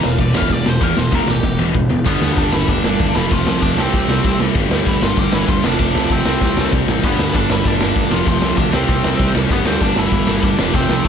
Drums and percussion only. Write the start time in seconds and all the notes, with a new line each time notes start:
0.03 snare
0.18 kick, crash
0.35 snare
0.42 kick
0.50 kick, crash
0.66 snare
0.81 kick, crash
0.97 snare
1.12 kick, crash
1.28 snare
1.43 kick, snare
1.59 high tom
1.74 kick, mid tom
1.90 floor tom
2.06 kick, crash
2.21 snare
2.36 kick, ride
2.53 snare
2.68 kick, ride
2.84 snare
2.99 kick, ride
3.16 snare
3.31 kick, ride
3.47 snare
3.62 kick, ride
3.78 snare
3.93 kick, ride
4.09 snare
4.24 kick, ride
4.40 snare
4.55 kick, ride
4.71 snare
4.86 kick, ride
5.02 snare
5.17 kick, ride
5.32 snare
5.48 kick, ride
5.64 snare
5.79 kick, ride
5.95 snare
6.10 kick, ride
6.25 snare
6.41 kick, ride
6.57 snare
6.72 kick, ride
6.88 snare
7.03 kick, crash
7.19 snare
7.34 kick, ride
7.50 snare
7.65 kick, ride
7.81 snare
7.95 kick, ride
8.11 snare
8.26 kick, ride
8.42 snare
8.57 kick, ride
8.73 snare
8.88 kick, ride
9.04 snare
9.19 kick, ride
9.35 snare
9.50 kick, ride
9.65 snare
9.80 kick, ride
9.96 snare
10.12 kick, ride
10.27 snare
10.43 kick, ride
10.59 snare
10.73 kick, ride
10.89 snare
11.04 kick, ride